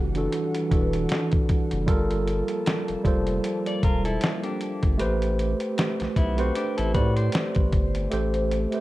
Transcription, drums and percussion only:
0.15 closed hi-hat
0.32 closed hi-hat
0.55 closed hi-hat
0.71 kick, closed hi-hat
0.93 closed hi-hat
1.09 snare, closed hi-hat
1.32 kick, closed hi-hat
1.49 kick, closed hi-hat
1.71 closed hi-hat
1.88 kick, closed hi-hat
2.11 closed hi-hat
2.27 closed hi-hat
2.48 closed hi-hat
2.66 snare, closed hi-hat
2.88 closed hi-hat
3.05 kick, closed hi-hat
3.27 closed hi-hat
3.44 closed hi-hat
3.66 closed hi-hat
3.83 kick, closed hi-hat
4.05 closed hi-hat
4.21 snare, closed hi-hat
4.43 closed hi-hat
4.61 closed hi-hat
4.83 kick, closed hi-hat
4.99 closed hi-hat
5.22 closed hi-hat
5.39 closed hi-hat
5.60 closed hi-hat
5.78 snare, closed hi-hat
6.00 snare, closed hi-hat
6.16 kick, closed hi-hat
6.38 closed hi-hat
6.55 closed hi-hat
6.78 closed hi-hat
6.95 kick, closed hi-hat
7.17 closed hi-hat
7.32 snare, closed hi-hat
7.55 kick, closed hi-hat
7.72 kick, closed hi-hat
7.95 closed hi-hat
8.12 closed hi-hat
8.34 closed hi-hat
8.51 closed hi-hat
8.72 closed hi-hat

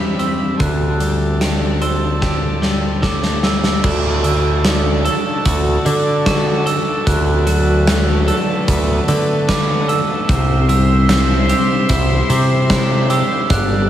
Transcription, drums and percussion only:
0.19 closed hi-hat
0.60 kick, closed hi-hat
1.00 closed hi-hat
1.41 snare, closed hi-hat
1.82 closed hi-hat
2.22 kick, snare
2.62 snare
3.03 kick, snare
3.23 snare
3.43 snare
3.64 snare
3.84 kick, crash
4.24 closed hi-hat
4.65 snare, closed hi-hat
5.06 closed hi-hat
5.45 kick, closed hi-hat
5.86 closed hi-hat
6.26 kick, snare, closed hi-hat
6.67 closed hi-hat
7.07 kick, closed hi-hat
7.47 closed hi-hat
7.87 snare, closed hi-hat
8.28 closed hi-hat
8.68 kick, closed hi-hat
9.08 closed hi-hat
9.49 kick, snare, closed hi-hat
9.89 closed hi-hat
10.29 kick, closed hi-hat
10.69 closed hi-hat
11.09 snare, closed hi-hat
11.49 closed hi-hat
11.89 kick, closed hi-hat
12.30 closed hi-hat
12.70 kick, snare, closed hi-hat
13.10 closed hi-hat
13.50 kick, closed hi-hat

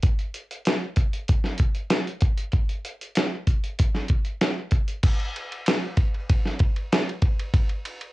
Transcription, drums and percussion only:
0.03 kick, closed hi-hat
0.19 closed hi-hat
0.34 closed hi-hat
0.51 closed hi-hat
0.65 snare, closed hi-hat
0.96 kick, closed hi-hat
1.13 closed hi-hat
1.28 kick, closed hi-hat
1.44 snare
1.58 kick, closed hi-hat
1.75 closed hi-hat
1.90 snare, closed hi-hat
2.07 closed hi-hat
2.21 kick, closed hi-hat
2.37 closed hi-hat
2.52 kick, closed hi-hat
2.69 closed hi-hat
2.85 closed hi-hat
3.01 closed hi-hat
3.15 snare, closed hi-hat
3.47 kick, closed hi-hat
3.64 closed hi-hat
3.79 kick, closed hi-hat
3.95 snare
4.08 kick, closed hi-hat
4.25 closed hi-hat
4.41 snare, closed hi-hat
4.71 kick, closed hi-hat
4.88 closed hi-hat
5.03 kick, crash, ride
5.20 ride
5.36 ride
5.52 ride
5.66 snare, ride
5.97 kick, ride
6.14 ride
6.29 kick, ride
6.45 snare
6.59 kick, ride
6.76 ride
6.92 snare, ride
7.09 ride
7.22 kick, ride
7.39 ride
7.54 kick, ride
7.69 ride
7.85 ride
8.01 ride

